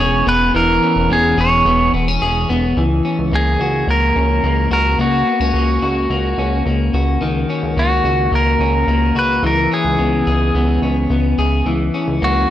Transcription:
Already playing: E3 B3 C#4 C#5
0.00 E1 G#4
0.27 E1 B3 B4
0.55 E1 E3 A#4
0.83 C#4
0.96 E1
1.10 E1 B3 G#4
1.37 E1 G#4 C#5
1.65 E1 B3
1.93 E1 B3
2.08 C#4
2.21 E1 G#4
2.49 E1 B3
2.77 C#2 E3
3.05 C#4
3.19 C#2
3.32 C#2 A#3 G#4
3.60 C#2 F#4
3.87 C#2 A#3 A#4
4.16 C#2 C#4
4.43 C#2 A#3
4.71 C#2 F#4 A#4
4.98 C#2 A#3 F#4
5.27 B3
5.40 C#2 C#4
5.54 C#2 A#3
5.82 C#2 F#4
6.10 C#2 A#3
6.38 C#2 C#4
6.65 C#2 A#3
6.94 C#2 F#4
7.21 C#2 D#3
7.50 C#4
7.63 C#2
7.77 C#2 A#3 F#4
8.04 C#2 F#4
8.32 C#2 A#3 A#4
8.59 C#2 C#4
8.87 C#2 A#3
9.15 C#2 F#4 B4
9.42 C#2 E3 A#4
9.72 C#4 G#4
9.85 C#2
9.99 C#2 B3
10.27 C#2 G#4
10.54 C#2 B3
10.82 C#2 C#4
11.10 C#2 B3
11.38 C#2 G#4
11.66 C#2 E3
11.94 C#4
12.08 C#2
12.22 C#2 A#3 F#4

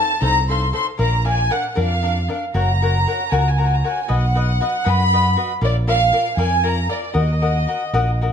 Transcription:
Already playing: D#4 A4 C5 F5 A5
0.21 C2 D#4 A4 C5 F5 A#5
0.49 D#4 A4 C5 F5 C6
0.73 D#4 A4 C5 F5 C6
0.98 A#1 D4 A#4 D5 F5 A#5
1.24 D4 A#4 D5 F5 G#5
1.50 D4 A#4 D5 F5 F#5
1.69 F#5
1.75 F2 D4 A#4 D5 F5
1.80 F5
2.03 D4 A#4 D5 F5
2.28 D4 A#4 D5 F5
2.54 F#1 F#4 A#4 C#5 F#5 A#5
2.82 F#4 A#4 C#5 F#5
3.07 F#4 A#4 C#5 F#5
3.32 C#2 F#4 A#4 C#5 F#5 G#5
3.40 A#5
3.49 G#5
3.58 F#4 A#4 C#5 F#5 A#5
3.66 G#5
3.75 A#5
3.84 F#4 A#4 C#5 F#5 G#5
4.03 G#5
4.08 B1 F#4 B4 D#5 F#5
4.35 F#4 B4 D#5 F#5
4.60 F#4 B4 D#5 F#5
4.85 F#2 F#4 B4 D#5 F#5 B5
5.13 F#4 B4 D#5 F#5
5.37 F#4 B4 D#5 F#5
5.61 A#1 F4 A#4 D5 F5
5.87 F4 A#4 D5 F5
6.13 F4 A#4 D5 F5
6.37 F2 F4 A#4 D5 F5 G#5
6.64 F4 A#4 D5 F5 A#5
6.89 F4 A#4 D5 F5
7.14 D#2 F#4 A#4 D#5 F#5
7.41 F#4 A#4 D#5 F#5
7.67 F#4 A#4 D#5 F#5
7.93 A#1 F#4 A#4 D#5 F#5
8.21 F#4 A#4 D#5 F#5

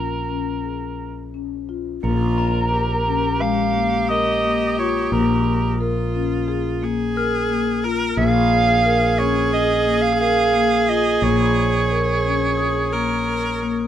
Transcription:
Already playing: A#1 F4 A#4
0.29 C#4
0.64 G#4
1.34 C#4
1.69 F4
2.02 A#1 A#3 F4 A#4
2.38 A#5
2.71 G4 A#4
3.06 C#4
3.41 G#3 F5
3.75 A#3
4.09 A#4 D#5 D#6
4.44 A#3
4.78 F4 C#5
5.12 A#1 A#3 A#4
5.80 F4 A#4
6.14 C#4
6.48 G#4
6.82 A#3 G#4
7.16 A#4 F6
7.50 A#3
7.84 F4 A#4
8.17 A#1 A#3 G#4 F5
8.85 A#4
9.19 C#4 C#5
9.53 G#4 D#5
9.86 A#3
10.02 F5
10.20 A#4 F5
10.54 A#3
10.88 F4 D#5
11.22 A#1 A#3 C#5
11.91 A#4
12.25 C#4
12.57 G#4 D#6
12.93 A#3 A#4
13.28 A#4
13.63 A#3

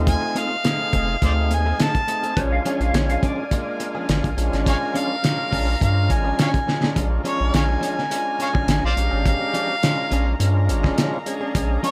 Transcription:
Already playing: D#2 A3 C4 D#4 F4 D#5
0.07 F5 G#5, kick, closed hi-hat
0.22 muted clean electric guitar stroke
0.35 A3 C4 D#4 G#4 F5, closed hi-hat
0.50 muted clean electric guitar stroke
0.64 A3 C4 D#4 G#4, snare, closed hi-hat
0.80 muted clean electric guitar stroke
0.93 F1 A3 C4 D#4 G#4, kick, closed hi-hat
1.08 muted clean electric guitar stroke
1.21 D2 A3 C4 D#4 G#4 C5 D5 F5, muted clean electric guitar stroke, kick, closed hi-hat
1.50 D#2 G#5, muted clean electric guitar stroke, closed hi-hat
1.66 A3 C4 D#4 G#4
1.79 A3 C4 D#4 G#4 A5, snare, closed hi-hat
1.95 muted clean electric guitar stroke, kick, closed hi-hat
2.07 A3 C4 D#4 G#4, muted clean electric guitar stroke, closed hi-hat
2.23 C4 D#4 G#4, closed hi-hat
2.37 A#1 F3 G#3 C#4 D4 F4 G#4 A#4 C#5 F5 G#5, kick, closed hi-hat
2.52 F5, muted clean electric guitar stroke
2.64 F3 G#3 C#4 D4 F4 G#4 C#5, closed hi-hat
2.80 A#1 F5, closed hi-hat
2.94 A#1 C#5, snare, closed hi-hat
3.10 F5, muted clean electric guitar stroke, closed hi-hat
3.22 F3 C#4 D4 G#4 D5, kick, closed hi-hat
3.38 muted clean electric guitar stroke
3.50 G#3 A#3 D4 F4, muted clean electric guitar stroke, kick, closed hi-hat
3.80 muted clean electric guitar stroke, closed hi-hat
3.95 F3 C#4 D4 G#4
4.08 G#1 F3 C#4 D4 G#4, snare, closed hi-hat
4.24 A#1, muted clean electric guitar stroke, kick, closed hi-hat
4.37 A#1 G#3 C#4 D4 F4, muted clean electric guitar stroke, closed hi-hat
4.52 G#1 C#4 D4 G#4, snare, closed hi-hat
4.66 C#5 F5 G#5 A#5, kick, closed hi-hat
4.81 muted clean electric guitar stroke
4.94 F3 C#4 D4 G#4 F5, closed hi-hat
5.10 muted clean electric guitar stroke
5.23 G#3 C#4 D4 F4, snare, closed hi-hat
5.39 muted clean electric guitar stroke
5.51 A#1 F3 C#4 D4 G#4, kick, open hi-hat
5.67 muted clean electric guitar stroke
5.80 G2 G#3 C#4 D4 F4 F5, muted clean electric guitar stroke, kick, closed hi-hat
6.09 G#1 G#5, muted clean electric guitar stroke, kick, closed hi-hat
6.24 F3 C#4 D4 G#4
6.37 F3 C#4 D4 G#4, snare, closed hi-hat
6.42 C#5 F5 G#5
6.54 muted clean electric guitar stroke, kick, closed hi-hat
6.67 G#3 C#4 D4 F4, muted clean electric guitar stroke, snare
6.82 C#4 D4 G#4, snare
6.95 A#1 F3 G#3 C#4 D4 F4 G#4 A#4 F5 A#5, kick, closed hi-hat
7.10 muted clean electric guitar stroke
7.24 F3 G#3 C#4 D4 F4 G#4, closed hi-hat
7.28 C#5
7.39 A#1, muted clean electric guitar stroke
7.54 A#1 C#5 F5 G#5, snare, closed hi-hat
7.68 muted clean electric guitar stroke
7.81 F3 C#4 D4 G#4, closed hi-hat
7.97 muted clean electric guitar stroke, snare
8.10 G#3 C#4 D4 F4, muted clean electric guitar stroke, closed hi-hat
8.39 C#5 F5 G#5, muted clean electric guitar stroke, closed hi-hat
8.54 F3 C#4 D4 G#4, kick
8.67 G#1 F3 C#4 D4 G#4, snare, closed hi-hat
8.71 G#5
8.83 A#1 C5 D5 F5, muted clean electric guitar stroke
8.96 A#1 G#3 C#4 D4 G4, muted clean electric guitar stroke, closed hi-hat
9.11 G#1 C#4 D4 G#4
9.26 F5, kick, closed hi-hat
9.41 muted clean electric guitar stroke
9.54 F3 C#4 D4 G#4, closed hi-hat
9.69 muted clean electric guitar stroke
9.82 G#3 C#4 D4 F4, snare, closed hi-hat
9.98 muted clean electric guitar stroke
10.11 A#1 F3 C#4 D4 G#4, closed hi-hat
10.26 muted clean electric guitar stroke
10.39 G2 G#3 C#4 D4 F4, muted clean electric guitar stroke, closed hi-hat
10.68 G#1, muted clean electric guitar stroke, closed hi-hat
10.83 F3 C#4 D4 G#4, kick, snare
10.97 F3 C#4 D4 G#4, snare, closed hi-hat
11.13 muted clean electric guitar stroke
11.26 G#3 C#4 D4 G#4, muted clean electric guitar stroke, closed hi-hat
11.41 C#4 D4 G#4
11.54 A#1 G#3 C#4 D4 G#4, kick, closed hi-hat
11.70 muted clean electric guitar stroke
11.83 F3 G#3 C#4 D4 F4 G#4 C#5, closed hi-hat

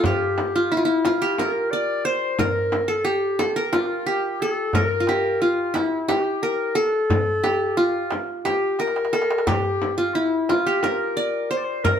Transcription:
Already playing: D4 F4 A4
0.04 G4, frame drum, darbuka dum
0.38 darbuka tek, frame drum
0.56 F4
0.71 E4
0.77 F4
0.85 E4, darbuka ka
1.05 F4, darbuka tek, frame drum
1.22 G4
1.38 A#4, darbuka tek, frame drum
1.45 A4
1.52 A#4, darbuka ka
1.71 D5, darbuka ka
2.05 C5, darbuka ka
2.39 A#4, frame drum, darbuka dum
2.72 darbuka tek, frame drum
2.88 A4
3.05 G4, darbuka ka
3.39 A4, darbuka tek, frame drum
3.56 A#4
3.73 F4, darbuka tek, frame drum
3.81 G4
3.87 F4, darbuka ka
4.06 G4, darbuka ka
4.40 A4, darbuka ka
4.73 A4 A#4, darbuka dum, frame drum
4.86 A#4
5.00 F4
5.07 G4, darbuka tek, frame drum
5.41 F4, darbuka ka
5.58 darbuka ka
5.74 E4, darbuka tek, frame drum
6.08 G4, darbuka tek, frame drum
6.26 darbuka ka
6.43 A#4, darbuka ka
6.75 A4, darbuka ka
7.10 darbuka dum, frame drum
7.44 G4, darbuka tek, frame drum
7.77 F4, darbuka ka
7.94 darbuka ka
8.11 darbuka tek, frame drum
8.45 G4, darbuka tek, frame drum
8.62 darbuka ka
8.79 A#4, darbuka tek
8.87 darbuka ka
8.96 darbuka tek
9.05 darbuka ka
9.13 A4, darbuka tek
9.22 darbuka ka
9.31 darbuka tek
9.38 darbuka ka
9.47 G4, darbuka dum, frame drum
9.82 frame drum
9.97 F4
10.14 E4
10.49 F4, darbuka tek, frame drum
10.64 G4
10.82 A#4, darbuka tek, frame drum
11.00 darbuka ka
11.17 D5, darbuka ka
11.51 C5, darbuka ka
11.57 D5
11.65 C5
11.83 A#4, frame drum, darbuka dum

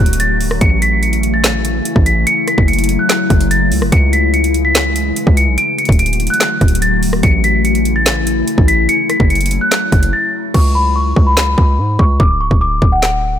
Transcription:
Already playing: D3 F#3 A3 F#4 F#6
0.00 D1
0.06 closed hi-hat
0.13 closed hi-hat
0.20 A6, closed hi-hat
0.41 C#1, open hi-hat
0.51 D1, cross-stick
0.61 A1 C#3 E3 E4 C#7, kick, closed hi-hat
0.82 B6, closed hi-hat
1.03 C#7, closed hi-hat
1.13 closed hi-hat
1.23 closed hi-hat
1.34 A6
1.44 snare, clap, closed hi-hat
1.65 closed hi-hat
1.85 closed hi-hat
1.96 A1, kick
2.06 B6, closed hi-hat
2.27 F#3 C#7, closed hi-hat
2.47 B6, cross-stick, closed hi-hat
2.58 F#1, kick
2.68 C#7, closed hi-hat
2.73 closed hi-hat
2.79 closed hi-hat
2.84 closed hi-hat
2.89 closed hi-hat
2.99 F#6
3.10 snare, clap, closed hi-hat
3.30 F#1, kick, closed hi-hat
3.41 closed hi-hat
3.51 A6, closed hi-hat
3.72 C#2, open hi-hat
3.82 F#1, cross-stick
3.92 C#2 C#3 E3 G#3 C#7, kick, closed hi-hat
4.13 B6, closed hi-hat
4.34 C#7, closed hi-hat
4.44 closed hi-hat
4.54 closed hi-hat
4.65 B6
4.75 snare, clap, closed hi-hat
4.96 closed hi-hat
5.16 closed hi-hat
5.27 C#2, kick
5.37 C#7, closed hi-hat
5.47 B1
5.58 D3 F#3 A3 F#4 D7, closed hi-hat
5.78 C#7, closed hi-hat
5.85 D1, kick, closed hi-hat
5.92 closed hi-hat
5.99 D7, closed hi-hat
6.06 closed hi-hat
6.13 closed hi-hat
6.20 closed hi-hat
6.27 F#6, closed hi-hat
6.34 closed hi-hat
6.41 snare, clap, closed hi-hat
6.61 D1, kick, closed hi-hat
6.68 closed hi-hat
6.75 closed hi-hat
6.82 A6, closed hi-hat
7.03 C#1, open hi-hat
7.13 D1, cross-stick
7.23 A1 C#3 E3 E4 C#7, kick, closed hi-hat
7.44 B6, closed hi-hat
7.65 C#7, closed hi-hat
7.75 closed hi-hat
7.85 closed hi-hat
7.96 A6
8.06 snare, clap, closed hi-hat
8.27 closed hi-hat
8.47 closed hi-hat
8.58 A1, kick
8.68 B6, closed hi-hat
8.89 F#3 A3 C#7, closed hi-hat
9.10 B6, cross-stick, closed hi-hat
9.20 F#1, kick
9.30 C#7, closed hi-hat
9.35 closed hi-hat
9.41 closed hi-hat
9.46 closed hi-hat
9.51 closed hi-hat
9.61 F#6
9.72 snare, clap, closed hi-hat
9.92 F#1, kick, closed hi-hat
10.03 closed hi-hat
10.13 A6
10.54 C#2 C#6, kick, crash
10.75 B5
10.96 C#6
11.16 C#2, kick
11.27 B5
11.37 snare, clap
11.58 C#2, kick
11.78 G#2
11.99 C#2 C#6, kick
12.20 D1 D6, kick
12.41 C#1 C#6
12.51 D1, kick
12.61 D6
12.82 D1, kick
12.92 F#5
13.03 snare, clap

